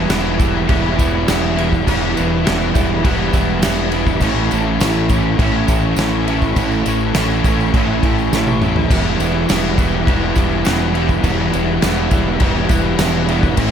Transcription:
Already playing: B3 E4
0.09 E1 E3 G3 B3 E4, snare, tambourine, crash
0.39 G3 B3 E4, kick, tambourine, crash
0.68 E1 E3 G3 B3 E4, kick, crash
0.98 E1 G3 B3 E4, kick, tambourine, crash
1.27 E1 E3 G3 B3 E4, snare, tambourine, crash
1.56 G3 B3 E4, crash
1.73 kick, tambourine
1.85 E1 E3 G3 B3 E4, kick, tambourine, crash
2.14 G3 B3 E4, tambourine, crash
2.18 E1
2.45 E1 E3 G3 B3 E4, snare, tambourine, crash
2.74 E1 G3 B3 E4, kick, tambourine, crash
3.04 E1 E3 G3 B3 E4, kick, crash
3.33 E1 G3 B3 E4, kick, tambourine, crash
3.62 E1 E3 G3 B3 E4, snare, tambourine, crash
3.92 G3 B3 E4, crash
4.07 kick, tambourine
4.20 A1 A2 E3 A3 C#4 E4, kick, tambourine, crash
4.51 A1 A3 C#4 E4, tambourine, crash
4.80 A1 E3 A3 C#4 E4, snare, tambourine, crash
5.09 C#4 E4, kick, tambourine, crash
5.13 A3
5.39 A1 A2 E3 A3 C#4 E4, kick, crash
5.68 A1 A3 C#4 E4, kick, tambourine, crash
5.96 A1 E3 A3 C#4 E4, snare, tambourine, crash
6.27 A3 C#4 E4, crash
6.42 kick, tambourine
6.56 A1 A2 E3 A3 C#4 E4, kick, tambourine, crash
6.72 tambourine
6.86 A1 A3 C#4 E4, tambourine, crash
7.00 tambourine
7.14 A1 E3 A3 C#4 E4, snare, tambourine, crash
7.30 tambourine
7.44 A1 A3 C#4 E4, kick, tambourine, crash
7.60 tambourine
7.74 A1 A2 E3 A3 C#4 E4, kick, tambourine, crash
8.03 A1 A3 C#4 E4, kick, crash
8.19 tambourine
8.32 A1 E3 A3 C#4 E4, snare, tambourine
8.47 high tom, tambourine
8.62 A3 C#4 E4, mid tom, tambourine
8.76 floor tom
8.91 E1 E3 G3 B3 E4, kick, tambourine, splash, crash
9.20 E1 G3 B3 E4, tambourine, crash
9.49 E1 E3 G3 B3 E4, snare, tambourine, crash
9.78 G3 B3 E4, kick, tambourine, crash
10.07 E1 E3 G3 B3 E4, kick, crash
10.35 E1 G3 B3 E4, kick, tambourine, crash
10.65 E1 E3 G3 B3 E4, snare, tambourine, crash
10.93 G3 B3 E4, crash
11.09 kick, tambourine
11.22 E1 E3 G3 B3 E4, kick, tambourine, crash
11.52 E1 G3 B3 E4, tambourine, crash
11.82 E1 E3 G3 B3 E4, snare, tambourine, crash
12.11 E1 G3 B3 E4, kick, tambourine, crash
12.39 E1 E3 G3 B3 E4, kick, crash
12.68 E1 G3 B3 E4, kick, tambourine, crash
12.98 E1 E3 G3 B3 E4, snare, tambourine, crash
13.27 G3 B3 E4, crash
13.43 kick, tambourine
13.56 A1 A2 E3 A3 C#4 E4, kick, tambourine, crash

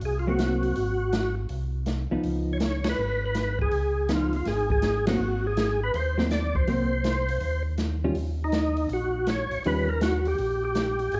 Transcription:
0.01 C2, open hi-hat
0.05 G#4
0.19 F4
0.27 F#3 A#3 C4 F#4
0.39 snare, closed hi-hat
0.63 open hi-hat
0.76 G#1, open hi-hat
1.13 snare, closed hi-hat
1.49 C2, open hi-hat
1.86 snare, closed hi-hat
2.11 C2 F3 B3 D#4
2.23 C#2, open hi-hat
2.53 C#5
2.60 snare, closed hi-hat
2.65 C#5
2.84 snare, ride
2.89 B4
2.98 G#1
3.26 B4
3.35 snare, closed hi-hat
3.59 G#4, kick
3.71 C#2, open hi-hat
4.09 F3 B3 D#4 F4, snare, closed hi-hat
4.33 F4, open hi-hat
4.45 G#1 G#4, snare, open hi-hat
4.70 G#4, kick
4.82 snare, closed hi-hat
5.07 F#3 A#3 C4 F#4, snare, ride
5.20 G#1
5.47 G#4
5.57 snare, closed hi-hat
5.83 B4
5.94 D#2 C5, open hi-hat
6.18 F#3 A#3 C4 C5, snare
6.31 D5, snare, closed hi-hat
6.55 C5, kick
6.67 C2 F#3 A#3 C4, open hi-hat
7.04 snare, closed hi-hat
7.29 open hi-hat
7.41 D#2, open hi-hat
7.78 snare, closed hi-hat
8.04 D#3 G3 C#4 F4
8.15 D#2, open hi-hat
8.44 D#4
8.52 snare, closed hi-hat
8.77 open hi-hat
8.89 A#1, open hi-hat
8.93 F#4
9.27 C#5, snare, closed hi-hat
9.51 A#1, open hi-hat
9.64 D#2 D#3 G3 C#4 F4 B4, open hi-hat
9.89 A#4
10.01 F#4, snare, closed hi-hat
10.25 G4, open hi-hat
10.38 A#1, open hi-hat
10.65 G4
10.75 snare, closed hi-hat
10.99 open hi-hat
11.12 G#1 G#4, open hi-hat

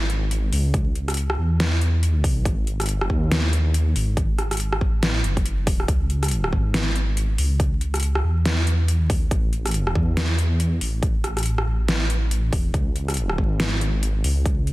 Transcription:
Already playing: G#1
0.10 closed hi-hat
0.31 closed hi-hat
0.53 C#2, open hi-hat
0.74 kick, closed hi-hat
0.95 closed hi-hat
1.08 cross-stick, closed hi-hat
1.10 closed hi-hat
1.14 closed hi-hat
1.17 closed hi-hat
1.30 cross-stick
1.38 E2
1.60 snare, closed hi-hat
1.81 closed hi-hat
2.03 closed hi-hat
2.24 kick, open hi-hat
2.45 G#1, kick, closed hi-hat
2.67 closed hi-hat
2.80 cross-stick, closed hi-hat
2.81 closed hi-hat
2.86 closed hi-hat
2.89 G1, closed hi-hat
3.01 cross-stick
3.10 D#2, kick
3.31 snare, closed hi-hat
3.53 closed hi-hat
3.74 closed hi-hat
3.96 G#1, open hi-hat
4.17 kick, closed hi-hat
4.39 cross-stick, closed hi-hat
4.51 cross-stick, closed hi-hat
4.57 closed hi-hat
4.60 closed hi-hat
4.73 cross-stick
4.81 A1, kick
5.03 snare, closed hi-hat
5.24 F#1, closed hi-hat
5.37 kick, closed hi-hat
5.46 closed hi-hat
5.67 kick, open hi-hat
5.80 cross-stick
5.88 C#2, kick, closed hi-hat
6.10 closed hi-hat
6.23 cross-stick, closed hi-hat
6.28 closed hi-hat
6.31 closed hi-hat
6.44 cross-stick
6.53 G#1, kick
6.74 snare, closed hi-hat
6.96 closed hi-hat
7.17 closed hi-hat
7.38 C#2, open hi-hat
7.60 kick, closed hi-hat
7.81 closed hi-hat
7.94 cross-stick, closed hi-hat
8.00 closed hi-hat
8.03 closed hi-hat
8.15 cross-stick
8.24 E2
8.45 snare, closed hi-hat
8.67 closed hi-hat
8.88 closed hi-hat
8.99 D#2
9.10 kick, open hi-hat
9.31 A1, kick, closed hi-hat
9.53 closed hi-hat
9.66 cross-stick, closed hi-hat
9.67 closed hi-hat
9.71 closed hi-hat
9.74 closed hi-hat
9.87 cross-stick
9.95 E2, kick
10.17 snare, closed hi-hat
10.38 closed hi-hat
10.60 closed hi-hat
10.81 A1, open hi-hat
11.03 kick, closed hi-hat
11.24 cross-stick, closed hi-hat
11.37 cross-stick, closed hi-hat
11.38 closed hi-hat
11.43 closed hi-hat
11.46 closed hi-hat
11.58 cross-stick
11.67 A1
11.88 snare, closed hi-hat
12.10 closed hi-hat
12.31 closed hi-hat
12.53 E1, kick, open hi-hat
12.74 C#2, kick, closed hi-hat
12.96 closed hi-hat
13.08 cross-stick, closed hi-hat
13.14 closed hi-hat
13.17 closed hi-hat
13.30 cross-stick
13.38 G#1, kick
13.60 snare, closed hi-hat
13.81 closed hi-hat
14.03 closed hi-hat
14.24 C#2, open hi-hat
14.46 kick, closed hi-hat
14.67 closed hi-hat

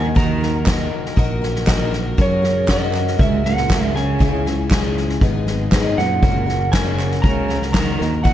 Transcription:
Already playing: D#2 D#3 F#3 A#3 D#4 F#4 A#4 D#5 G#5
0.15 D#3 A#3 D#4 F#4 A#4 A#5, kick, snare
0.41 D#4 F#4 A#4, snare
0.66 D#3 F#3 A#3 D#4 F#4 A#4 D#5, kick, snare, clap
1.05 snare
1.16 A#1 F#3 A#3 D#4 F#4 A#4 D#5, kick, snare
1.42 D#4 F#4 A#4, snare
1.55 snare
1.66 D#3 F#3 A#3 D#4 F#4 A#4 D#5, kick, snare, clap
1.91 D#4 F#4 A#4, snare
2.17 F#1 F#2 F#3 G#3 A#3 C#4 F#4 G#4 A#4 C#5, kick, snare
2.21 F#2 C#5
2.42 C#4 F#4 G#4, snare
2.66 F#3 G#3 A#3 C#4 F#4 G#4 A#4, kick, snare, clap
2.71 F#2 D#5
2.93 snare, clap
3.07 snare
3.18 C#2 G#2 G#3 A#3 C#4 F#4 G#4 A#4 C#5 E5, kick, snare
3.44 A#2 C#4 F#4 G#4 F#5, snare
3.57 snare
3.69 F#3 G#3 A#3 C#4 F#4 G#4 A#4 E5, kick, snare, clap
3.94 C#3 C#4 F#4 G#4 G#5, snare
4.19 C#2 C#3 G#3 C#4 E4 G#4 C#5 E5, kick, snare
4.46 C#4 E4 G#4, snare
4.71 C#3 G#3 C#4 E4 G#4 C#5 D#5, kick, snare, clap
4.97 snare
5.09 snare
5.21 G#1 G#2 G#3 B3 D#4 G#4 B4 D#5, kick, snare
5.46 G#3 B3 D#4 G#4, snare
5.71 G#2 D#3 G#3 B3 D#4 G#4 B4 C#5, kick, snare, clap
5.97 F#2 A#2 G#3 B3 D#4 G#4 F#5, snare
6.22 F#1 F#2 F#3 G#3 A#3 C#4 F#4 G#4 A#4 C#5, kick, snare
6.46 C#4 F#4 A#4, snare
6.72 C#3 F#3 G#3 A#3 C#4 F#4 G#4 A#4 E5 G#5, kick, snare, clap
6.98 snare, clap
7.11 snare
7.22 C#2 C#3 F#3 G#3 A#3 C#4 F#4 G#4 A#4 C#5 A#5, kick, snare
7.48 C#4 F#4 A#4, snare
7.62 snare
7.73 D#3 F#3 G#3 A#3 C#4 F#4 G#4 A#4 A#5, kick, snare, clap
7.98 D#2 D#3 F#3 A#3 D#4 F#4 A#4 D#5, snare
8.24 A#2 D#3 F#3 D#4 F#4 A#4 F#5, kick, snare

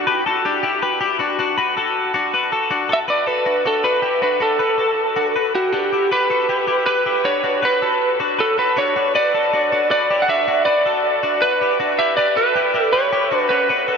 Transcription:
0.07 G4 B4
0.26 F#4 A4
0.45 D4 G4
0.63 E4 G4
0.82 G4 B4
1.01 E4 G4
1.19 D4 F#4
1.39 D4 F#4
1.58 F#4 B4
1.77 F#4 A4
2.14 D4 F#4
2.34 F#4 B4
2.52 F#4 A4
2.71 D4 F#4
2.89 F#4 A4
2.93 E5
3.08 F#4 B4 D5
3.27 F#4 A4 B4
3.46 D4 F#4
3.65 D4 F#4 A4
3.84 F#4 B4
4.02 E4 G4
4.22 D4 F#4 B4
4.40 D4 F#4 A4
4.59 F#4 B4
4.78 F#4 A4
5.16 D4 F#4
5.36 F#4 B4
5.55 E4 F#4 G4
5.72 D4 F#4 G4
5.92 E4 G4
6.11 G4 B4
6.30 F#4 A4
6.49 E4 G4
6.68 E4 G4
6.86 G4 B4
7.06 E4 G4
7.24 D4 F#4 C#5
7.44 D4 F#4
7.62 F#4 B4
7.82 F#4 A4
8.20 D4 F#4
8.39 F#4 A4 B4
8.58 F#4 A4 B4
8.77 D4 F#4 C#5
8.96 D4 F#4
9.15 F#4 B4 D5
9.34 F#4 A4
9.53 D4 F#4
9.72 D4 F#4
9.91 F#4 B4 D5
10.10 E4 G4
10.22 F#5
10.28 D4 F#4 E5
10.48 D4 F#4
10.65 F#4 B4 D5
10.86 F#4 A4
11.23 D4 F#4
11.42 F#4 B4
11.61 E4 G4
11.80 D4 F#4
11.99 E4 G4 E5
12.17 G4 B4 D5
12.37 F#4 A4 B4
12.56 E4 G4
12.74 E4 G4
12.83 A4
12.93 G4 B4 C#5
13.13 E4 G4
13.31 D4 F#4
13.39 B4
13.49 C#4 F#4 B4
13.69 F#4 B4
13.88 F#4 A4

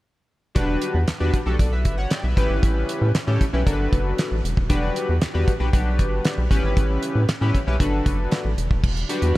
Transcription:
0.55 E1 D4 F#4 G4 B4, kick, closed hi-hat
0.82 closed hi-hat
0.94 E2
1.08 E2, snare, clap, closed hi-hat
1.20 E2 D4 F#4 G4 B4
1.34 kick, closed hi-hat
1.46 B1 D4 F#4 G4 A4
1.59 B1 A4 D5, kick, closed hi-hat
1.73 B4 E5
1.85 G1, kick, closed hi-hat
1.98 C#5 F#5
2.10 D5 G5, snare, clap, closed hi-hat
2.24 B1 B4 E5
2.37 A1 C#4 E4 G4 B4, kick, closed hi-hat
2.50 G#1
2.63 A1, kick, closed hi-hat
2.89 closed hi-hat
3.02 A2
3.15 A2, snare, clap, closed hi-hat
3.27 A2 C#4 E4 G4 A4
3.41 kick, closed hi-hat
3.53 B1 C#4 E4 G4 B4
3.66 G1 D4 F#4 A4 A#4, kick, closed hi-hat
3.73 B4
3.93 F#1, kick, closed hi-hat
4.18 snare, clap, closed hi-hat
4.31 A1
4.44 E1, closed hi-hat
4.57 D#1, kick
4.69 E1 D4 F#4 G4 B4, kick, closed hi-hat
4.96 closed hi-hat
5.09 E2
5.22 E2, snare, clap, closed hi-hat
5.34 E2 D4 F#4 G4 B4
5.48 kick, closed hi-hat
5.59 B1 D4 F#4 G4 B4
5.73 B1 D4 F#4 G4 B4, kick, closed hi-hat
5.99 G1, kick, closed hi-hat
6.25 snare, clap, closed hi-hat
6.38 B1
6.50 A1 C#4 E4 G4 B4, kick, closed hi-hat
6.64 G#1
6.77 A1, kick, closed hi-hat
7.03 closed hi-hat
7.15 A2
7.28 A2, snare, clap, closed hi-hat
7.41 A2 C#4 E4 G4 B4
7.55 kick, closed hi-hat
7.67 B1 C#4 E4 G4 B4
7.80 G1 D4 F#4 A4 B4, kick, closed hi-hat
8.06 F#1, kick, closed hi-hat
8.31 snare, clap, closed hi-hat
8.45 A1
8.57 E1, closed hi-hat
8.71 D#1, kick
8.83 E1, kick, crash
8.97 closed hi-hat
9.09 D4 F#4 G4 B4, closed hi-hat
9.22 E2, closed hi-hat

